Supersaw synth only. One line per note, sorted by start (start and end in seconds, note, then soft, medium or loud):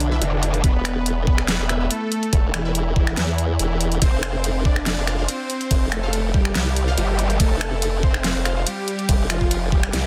0.00 0.13 D3 medium
0.00 0.13 D4 loud
0.22 0.55 D3 medium
0.22 0.55 D4 loud
0.64 1.19 B3 medium
0.64 1.19 B4 loud
1.27 1.83 B3 medium
1.27 1.82 B4 loud
1.91 2.46 A3 medium
1.91 2.46 A4 loud
2.54 2.88 E3 medium
2.54 2.88 E4 loud
2.96 3.52 E3 medium
2.96 3.52 E4 loud
3.59 3.93 E3 medium
3.59 3.93 E4 medium
4.02 4.57 C4 medium
4.02 4.57 C5 loud
4.65 5.21 D4 medium
4.65 5.21 D5 loud
5.29 5.84 C4 medium
5.29 5.84 C5 loud
5.92 6.26 A3 medium
5.92 6.26 A4 medium
6.34 6.90 G3 medium
6.34 6.90 G4 loud
6.98 7.31 G3 medium
6.98 7.31 G4 medium
7.40 7.95 A3 medium
7.40 7.95 A4 loud
8.03 8.59 C4 medium
8.03 8.59 C5 loud
8.67 9.22 G3 medium
8.67 9.22 G4 loud
9.30 9.64 F3 medium
9.30 9.64 F4 loud
9.72 10.07 G3 medium
9.72 10.07 G4 loud